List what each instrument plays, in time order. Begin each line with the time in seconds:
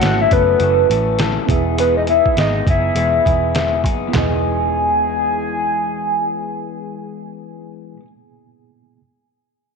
Already playing: reed electric piano A3 E4 F#4 C#5
0.01 picked electric bass G#1, clean electric guitar F#2 C#3 E3 A3 C#4 A4, soft synth lead F#5, snare, closed hi-hat
0.21 soft synth lead E5
0.30 picked electric bass F#1, clean electric guitar E3 A3 C#4 A4, soft synth lead B4, kick, closed hi-hat
0.60 picked electric bass F#1, clean electric guitar E3 A3 C#4 A4, closed hi-hat
0.90 picked electric bass A1, clean electric guitar E3 A3 C#4 A4, closed hi-hat
1.19 clean electric guitar F#2 C#3 E3 A3 C#4 A4, snare, closed hi-hat
1.46 picked electric bass E1, reed electric piano B3 E4 G#4, clean electric guitar D#4 G#4, kick, closed hi-hat
1.51 clean electric guitar B3, reed electric piano E5
1.78 clean electric guitar E3 G#3 B3 D#4 G#4, soft synth lead B4, closed hi-hat
1.97 soft synth lead D#5
2.07 clean electric guitar B3 D#4 G#4, soft synth lead E5, closed hi-hat
2.26 kick
2.37 picked electric bass G#1, clean electric guitar E3 G#3 B3 D#4 G#4, soft synth lead D#5, snare, closed hi-hat
2.66 picked electric bass F#1, clean electric guitar B3 D#4 G#4, soft synth lead E5, kick, closed hi-hat
2.95 picked electric bass E1, clean electric guitar G#3 B3 D#4 G#4, closed hi-hat
3.25 picked electric bass E1, clean electric guitar B3 D#4 G#4, kick, closed hi-hat
3.55 clean electric guitar E3 G#3 B3 D#4 G#4, snare, closed hi-hat
3.84 picked electric bass F#1, clean electric guitar B3 D#4 G#4, kick, closed hi-hat
4.07 clean electric guitar E3, reed electric piano B3
4.12 picked electric bass E1, clean electric guitar G#3, reed electric piano E4 G#4, soft synth lead G#5, snare, clap, floor tom
4.18 clean electric guitar B3, reed electric piano D#5
4.24 clean electric guitar D#4
4.29 clean electric guitar G#4